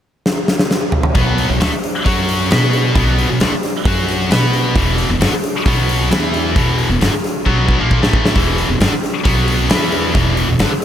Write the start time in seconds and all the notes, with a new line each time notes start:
0.26 snare
0.48 snare
0.59 snare
0.71 snare
0.92 mid tom
1.03 mid tom
1.15 B1 B2 F#3 B3, kick, open hi-hat
1.38 open hi-hat
1.49 B1 B2 F#3
1.60 D2 D3 A3, snare, open hi-hat
1.71 muted distorted electric guitar stroke, muted upright bass stroke
1.84 open hi-hat
2.04 F#2 F#3 C#4 F#4, kick, open hi-hat
2.29 open hi-hat
2.50 B2 B3 F#4 B4, snare, open hi-hat
2.73 open hi-hat
2.95 B1 B2 F#3 B3, kick, open hi-hat
3.19 open hi-hat
3.29 B1 B2 F#3
3.40 D2 D3 A3, snare, open hi-hat
3.51 muted upright bass stroke, muted distorted electric guitar stroke
3.63 snare, open hi-hat
3.85 F#2 F#3 C#4 F#4, kick, open hi-hat
4.08 open hi-hat
4.30 B2 B3 F#4 B4, snare, open hi-hat
4.53 open hi-hat
4.76 E1 E2 B2 E3, kick, open hi-hat
4.98 open hi-hat
5.09 E1 E2 B2
5.20 G1 G2 D3, snare, open hi-hat
5.32 muted upright bass stroke, muted distorted electric guitar stroke
5.44 open hi-hat
5.66 B1 B2 F#3 B3, kick, open hi-hat
5.89 open hi-hat
6.11 E2 E3 B3 E4, snare, open hi-hat
6.34 open hi-hat
6.56 E1 E2 B2 E3, kick, open hi-hat
6.79 open hi-hat
6.89 E1 E2 B2
7.01 G1 G2 D3, snare, open hi-hat
7.12 muted distorted electric guitar stroke
7.24 snare, open hi-hat
7.45 B1 B2 F#3 B3, kick
7.68 kick
7.79 A#1 A#2 F3 A#3
7.91 kick
8.02 A1 A2 E3 A3, snare
8.13 kick
8.25 snare
8.35 E1 E2 B2 E3, kick, open hi-hat
8.58 open hi-hat
8.69 E1 E2 B2
8.80 G1 G2 D3, snare, open hi-hat
8.92 muted distorted electric guitar stroke
9.04 snare, open hi-hat
9.24 B1 B2 F#3 B3, kick, open hi-hat
9.48 open hi-hat
9.69 E2 E3 B3 E4, snare, open hi-hat
9.92 open hi-hat
10.13 E1 E2 B2 E3, kick, open hi-hat
10.37 open hi-hat
10.48 E1 E2 B2
10.59 G1 G2 D3, snare, open hi-hat
10.72 muted distorted electric guitar stroke